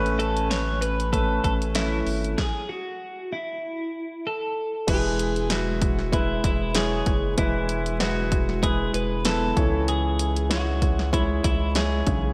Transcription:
Already playing: A1 A2 A3 C#4 B4
0.06 closed hi-hat
0.19 A4, closed hi-hat
0.37 closed hi-hat
0.51 A3 C#4 B4 C#5, snare, closed hi-hat
0.82 B4, closed hi-hat
1.00 closed hi-hat
1.13 A3 C#4 A4 B4, kick, closed hi-hat
1.44 A1 A4, kick, closed hi-hat
1.62 closed hi-hat
1.75 A3 C#4 E4 B4, snare, closed hi-hat
2.07 G#1, open hi-hat
2.24 closed hi-hat
2.38 G#4, kick, snare
2.69 F#4
3.33 E4
4.27 A4
4.87 E1 E3 G#3 E4 G#4 B4, kick, closed hi-hat, crash
5.19 closed hi-hat
5.36 closed hi-hat
5.50 G#3 E4 F#4 B4, snare, closed hi-hat
5.82 kick, closed hi-hat
5.99 snare
6.12 G#3 E4 B4, kick, closed hi-hat
6.44 E1 E4, kick, closed hi-hat
6.75 G#3 E4 G#4 C#5, snare, closed hi-hat
7.06 F#1, kick, closed hi-hat
7.38 E1 E3 G#3 E4 B4, kick, closed hi-hat
7.69 closed hi-hat
7.86 closed hi-hat
8.00 G#3 E4 F#4 B4, snare, closed hi-hat
8.32 kick, closed hi-hat
8.49 snare
8.63 G#3 E4 G#4 B4, kick, closed hi-hat
8.94 E1 B4, closed hi-hat
9.25 B3 E4 A4 B4, snare, closed hi-hat
9.56 C#2 C#3 E3 E4 C#5, kick, closed hi-hat
9.88 G#4, closed hi-hat
10.19 closed hi-hat
10.36 closed hi-hat
10.50 G#3 E4 F#4 C#5, snare, closed hi-hat
10.82 kick, closed hi-hat
10.99 snare
11.13 G#3 E4 C#5, kick, closed hi-hat
11.44 C#2 E4, kick, closed hi-hat
11.75 G#3 E4 G#4 C#5, snare, closed hi-hat
12.07 B1 C#3, kick, closed hi-hat

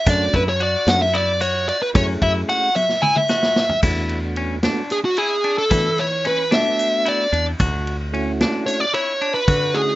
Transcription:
0.06 F#2 A3 C#4 D4 F#4 D5, kick, ride, shaker
0.33 F#2 E4 B4, kick, snare, ride
0.49 C#5
0.60 F#4 D5, ride
0.86 F#2 A3 C#4 D4 F#4 F#5, snare, ride, shaker
1.02 E5
1.14 E4 D5, ride
1.41 F#4 C#5, ride, shaker
1.68 D5, ride
1.82 B4
1.94 F#2 A3 C#4 E4 G#4 C#5, kick, ride, shaker
2.22 F#2 E4 E5, kick, ride
2.49 F#4 F#5, snare, ride, shaker
2.76 E5, high tom, shaker
2.89 snare
3.02 E4 G#5, mid tom, shaker
3.16 E5, mid tom
3.28 F#4, snare, shaker
3.43 snare
3.56 snare
3.69 floor tom
3.83 E2 A3 B3 D4 E4 F#4, kick, crash, shaker
4.09 ride
4.36 C#4, ride
4.63 A3 B3 D4 F#4, snare, ride
4.90 G#4, ride, shaker
5.05 F#4
5.17 E4 G#4, ride
5.44 D4, ride
5.58 A4
5.71 E3 A3 B3 D4 E4 F#4, kick, ride, shaker
5.98 C#5, snare, ride
6.25 C#4 B4, snare, ride
6.51 A3 B3 D4 F#4 E5, snare, ride
6.79 ride, shaker
7.05 E4 D5, ride
7.32 E2 D4, ride
7.60 D2 F#4, kick, ride, shaker
7.87 ride
8.13 A3 C#4 E4 F#4, ride
8.41 D4, snare, ride
8.66 A3 C#4 E4 F#4 C#5, ride, shaker
8.80 D5
8.94 E4 C#5, ride
9.21 D4, ride
9.34 B4
9.48 D3 F#4, kick, ride, shaker
9.74 A3 C#4 E4 F#4 G#4, ride

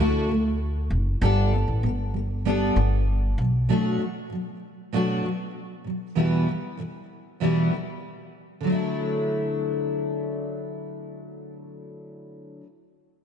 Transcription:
Already playing: D2 D3 A3
0.00 E4 F#4
0.29 D3 A3
0.90 F#1
1.21 G1 G3 B3 D4 A4
1.53 G3 B3
1.68 A1
1.83 G1 G3 B3
2.14 G3 B3
2.45 G3 B3 D4 A4
2.76 G1 G3 B3
3.38 B1 B2 F#3
3.69 B2 F#3 A3 D4 F#4
3.99 B2 F#3
4.30 B2 F#3
4.93 B2 F#3 A3 D4 F#4
5.23 B2 F#3
5.84 B2 F#3
6.15 E2 B2 E3 G3 B3 E4
6.47 E2 B2
6.77 E2 B2 E3
7.40 E2 B2 E3 G3 B3 E4
7.71 E2 B2 E3
8.61 D3 F#3
8.67 A3 D4
8.72 E4

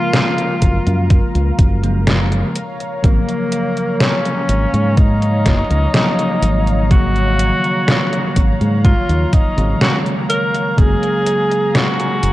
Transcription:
Already playing: C#3 F3 G#3 A#3 F4 A#4 F5 A#5
0.13 snare, closed hi-hat
0.38 closed hi-hat
0.62 F#1, kick, closed hi-hat
0.87 F#2, closed hi-hat
1.10 kick, closed hi-hat
1.35 C#2, closed hi-hat
1.59 F#1, kick, closed hi-hat
1.83 C#3 F3 G#3 A#3, closed hi-hat
2.07 snare, closed hi-hat
2.32 closed hi-hat
2.55 C#5, closed hi-hat
2.80 closed hi-hat
3.03 G#1 C#3 F3 F#3 A#3, kick, closed hi-hat
3.29 closed hi-hat
3.52 closed hi-hat
3.77 closed hi-hat
4.01 C#4, snare, closed hi-hat
4.26 closed hi-hat
4.49 G#1, closed hi-hat
4.74 G#2, closed hi-hat
4.97 D#4, kick, closed hi-hat
5.22 closed hi-hat
5.46 F#1, kick, snare, closed hi-hat
5.70 C#2, closed hi-hat
5.94 C#3 F3 F#3 A#3, snare, closed hi-hat
6.19 closed hi-hat
6.42 G#1, closed hi-hat
6.67 closed hi-hat
6.89 C#3 D#3 F#3 A#3 F#4, kick, closed hi-hat
7.16 closed hi-hat
7.39 closed hi-hat
7.64 closed hi-hat
7.88 snare, closed hi-hat
8.13 closed hi-hat
8.36 G#1, kick, closed hi-hat
8.61 G#2, closed hi-hat
8.85 F4, kick, closed hi-hat
9.09 D#2, closed hi-hat
9.33 D#4, kick, closed hi-hat
9.56 G#1 C#3 D#3 F#3 G#3, closed hi-hat
9.81 F#4, snare, closed hi-hat
10.06 closed hi-hat
10.30 A#4, closed hi-hat
10.54 closed hi-hat
10.77 F#1 C#3 F#3 G#3 A#3 G#4 G#5, kick, closed hi-hat
11.03 closed hi-hat
11.26 closed hi-hat
11.51 closed hi-hat
11.75 F#4, snare, closed hi-hat
12.00 closed hi-hat
12.23 F#1, closed hi-hat

